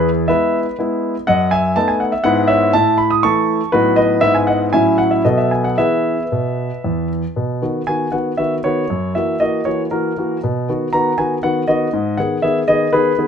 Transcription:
Already playing: E2 G#4
0.28 G#3 B3 E4 B4 E5
0.79 G#3 B3 E4
1.27 F#2 D#5 F#5
1.51 E5 G#5
1.76 A3 B3 D#4 A5
1.88 G#5
2.00 F#5
2.12 E5
2.24 G#2 G#3 B3 E4 B4 F#5
2.48 C#5 E5
2.73 A2 E5 A5
2.98 B5
3.10 D#6
3.23 E3 A3 E4 A5 C#6
3.72 A2 F#3 B3 D#4 F#4 B4
3.96 B4 D#5
4.21 G#2 G#3 B3 E4 E5
4.35 G#5
4.47 D#5 F#5
4.73 A2 F#3 C#4 E4 E5 G#5
4.98 F#5
5.11 E5
5.25 B2 F#3 B3 A4 D#5
5.38 E5
5.51 G#5
5.64 F#5
5.78 E3 B3 G#4 B4 E5
6.32 B2
6.84 E2
7.36 B2
7.62 D#3 B3 F#4
7.87 D#3 B3 F#4 G#5
8.12 D#3 B3 F#4 F#5
8.37 D#3 B3 F#4 E5
8.64 D#3 B3 F#4 C#5
8.90 F#2
9.15 E3 A#3 F#4 E5
9.40 E3 A#3 F#4 D#5
9.65 E3 A#3 F#4 C#5
9.91 E3 A#3 F#4 A#4
10.18 E3 A#3 F#4
10.44 B2
10.69 D#3 B3 F#4
10.93 D#3 B3 F#4 A#5
11.18 D#3 B3 F#4 G#5
11.43 D#3 B3 F#4 F#5
11.68 D#3 B3 F#4 D#5
11.93 G#2
12.17 D#3 B3 G#4 F#5
12.42 D#3 B3 G#4 E5
12.68 D#3 B3 G#4 D#5
12.93 D#3 B3 G#4 B4
13.18 D#3 B3 G#4

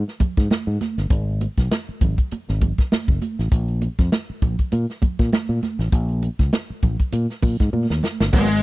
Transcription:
0.08 snare
0.20 muted fingered electric bass stroke, kick, closed hi-hat, muted conga, low conga
0.37 G#2, kick, snare, closed hi-hat
0.51 snare, high conga
0.67 G#2
0.81 snare, closed hi-hat, high conga
0.98 G1, snare, closed hi-hat
1.10 G#1, kick, closed hi-hat
1.41 closed hi-hat, muted conga
1.58 B1, kick, snare, closed hi-hat
1.71 snare, high conga
1.88 muted fingered electric bass stroke, closed hi-hat
2.01 G#1, kick, closed hi-hat, low conga
2.18 kick, closed hi-hat
2.31 muted fingered electric bass stroke, closed hi-hat, muted conga
2.49 G#1, snare, closed hi-hat
2.61 kick, closed hi-hat, muted conga, low conga
2.78 kick, snare, closed hi-hat
2.92 muted fingered electric bass stroke, snare, high conga
3.08 F#1, kick
3.22 closed hi-hat, high conga
3.39 A1, snare, closed hi-hat
3.52 A#1, kick, closed hi-hat
3.68 closed hi-hat
3.82 closed hi-hat, muted conga
3.99 F2, kick, snare, closed hi-hat
4.12 snare, high conga
4.30 muted fingered electric bass stroke
4.42 A#1, kick, closed hi-hat, low conga
4.59 kick, closed hi-hat
4.72 A#2, closed hi-hat, muted conga
4.90 snare, closed hi-hat
5.02 muted fingered electric bass stroke, kick, closed hi-hat, muted conga, low conga
5.19 A#2, kick, snare, closed hi-hat
5.33 snare, high conga
5.49 A#2, closed hi-hat
5.63 snare, closed hi-hat, high conga
5.79 A1, snare, closed hi-hat
5.92 A#1, kick, closed hi-hat, muted conga
6.09 closed hi-hat
6.23 closed hi-hat, muted conga
6.39 C#2, kick, snare, closed hi-hat
6.53 snare, high conga
6.70 muted fingered electric bass stroke
6.83 A#1, kick, closed hi-hat, low conga
7.00 kick, closed hi-hat
7.13 A#2, closed hi-hat, muted conga
7.30 snare, closed hi-hat
7.42 A#2, kick, open hi-hat, muted conga, low conga
7.59 G#2, kick, snare, closed hi-hat
7.73 A#2, high conga
7.90 D#2, snare
8.03 snare, high conga
8.20 G1, snare
8.33 G#1 F#3 G#3 A#3 B3, kick, crash, muted conga
8.50 ride bell

